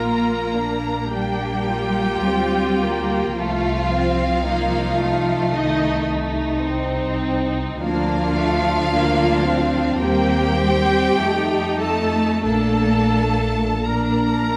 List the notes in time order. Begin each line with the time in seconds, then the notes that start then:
Already playing: A#1 A#3 F4 A#4 A#5
0.54 D4
1.10 G3 A#3 D4 G4 G5
1.69 F4
2.25 D2 C4
2.81 A#3
3.35 C2 F3 A3 F4 F5
3.91 C4
4.45 A#3 D#4
4.99 A3
5.53 D#3 D#4 D#5
6.65 C4
7.79 D2 F3 A#3 D4 F4 F5
8.36 A3
8.89 A#3 D4
9.44 C4
9.97 D#2 G3 A#3 C4 G4 G5
10.57 C4
11.17 F2 A3 D#4
11.80 A3 A4 A5
12.45 A#1 A3 A#3 D4 A4 A5
13.84 A#3 D4 A#4 A#5